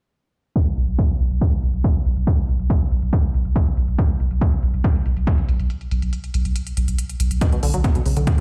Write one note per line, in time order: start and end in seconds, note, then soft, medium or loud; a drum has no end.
0.56 kick loud
0.56 closed hi-hat medium
0.67 closed hi-hat soft
0.77 0.87 B1 medium
0.77 closed hi-hat medium
0.88 0.98 B1 medium
0.88 closed hi-hat medium
0.99 kick loud
0.99 closed hi-hat medium
1.10 closed hi-hat medium
1.20 1.30 B1 medium
1.20 closed hi-hat medium
1.31 1.41 B1 medium
1.31 closed hi-hat medium
1.41 kick loud
1.41 closed hi-hat medium
1.52 closed hi-hat medium
1.63 1.73 B1 loud
1.63 closed hi-hat medium
1.74 1.84 B1 medium
1.74 closed hi-hat medium
1.84 kick loud
1.84 closed hi-hat medium
1.95 closed hi-hat medium
2.06 2.16 B1 loud
2.06 closed hi-hat medium
2.17 2.27 B1 medium
2.17 closed hi-hat medium
2.27 kick loud
2.27 closed hi-hat medium
2.38 closed hi-hat medium
2.49 2.59 B1 loud
2.49 closed hi-hat medium
2.60 2.70 B1 medium
2.60 closed hi-hat medium
2.70 kick loud
2.70 closed hi-hat medium
2.81 closed hi-hat medium
2.91 3.02 B1 loud
2.91 closed hi-hat medium
3.02 3.13 B1 medium
3.02 closed hi-hat medium
3.13 kick loud
3.13 closed hi-hat medium
3.24 closed hi-hat medium
3.34 3.45 B1 loud
3.34 closed hi-hat medium
3.45 3.55 B1 medium
3.45 closed hi-hat medium
3.56 kick loud
3.56 closed hi-hat medium
3.67 closed hi-hat medium
3.77 3.87 B1 loud
3.77 closed hi-hat medium
3.88 3.98 B1 medium
3.88 closed hi-hat medium
3.99 kick loud
3.99 closed hi-hat medium
4.10 closed hi-hat soft
4.20 4.30 B1 medium
4.20 closed hi-hat medium
4.31 4.41 B1 medium
4.31 closed hi-hat medium
4.41 kick loud
4.41 closed hi-hat medium
4.52 closed hi-hat medium
4.63 4.73 B1 loud
4.63 closed hi-hat medium
4.74 4.84 B1 medium
4.74 closed hi-hat soft
4.84 kick loud
4.84 closed hi-hat medium
4.95 closed hi-hat medium
5.06 5.16 B1 loud
5.06 closed hi-hat medium
5.17 5.27 B1 medium
5.17 closed hi-hat medium
5.27 kick loud
5.27 closed hi-hat medium
5.38 closed hi-hat medium
5.49 5.59 B1 loud
5.49 closed hi-hat medium
5.60 5.70 B1 medium
5.60 closed hi-hat medium
5.70 closed hi-hat medium
5.81 closed hi-hat soft
5.91 6.02 B1 loud
5.91 closed hi-hat medium
6.02 6.13 B1 medium
6.02 closed hi-hat medium
6.13 closed hi-hat medium
6.24 closed hi-hat medium
6.34 6.45 B1 loud
6.34 closed hi-hat medium
6.45 6.56 B1 medium
6.45 closed hi-hat medium
6.56 closed hi-hat medium
6.67 closed hi-hat medium
6.77 6.87 B1 loud
6.77 closed hi-hat medium
6.88 6.98 B1 medium
6.88 closed hi-hat medium
6.99 closed hi-hat medium
7.10 closed hi-hat medium
7.20 7.30 B1 loud
7.20 closed hi-hat medium
7.31 7.41 B1 medium
7.31 closed hi-hat medium
7.41 7.46 B2 medium
7.41 kick loud
7.41 closed hi-hat medium
7.52 7.59 B2 medium
7.52 closed hi-hat medium
7.63 7.73 B1 loud
7.63 7.70 D3 medium
7.63 open hi-hat loud
7.74 7.84 B1 medium
7.74 7.78 F#3 medium
7.74 closed hi-hat medium
7.84 7.91 B3 medium
7.84 kick loud
7.84 closed hi-hat medium
7.95 8.02 B2 medium
7.95 closed hi-hat medium
8.06 8.16 B1 loud
8.06 8.13 C#3 medium
8.06 open hi-hat medium
8.17 8.27 B1 medium
8.17 8.23 D3 medium
8.17 closed hi-hat medium
8.27 8.37 B2 medium
8.27 kick loud
8.27 closed hi-hat medium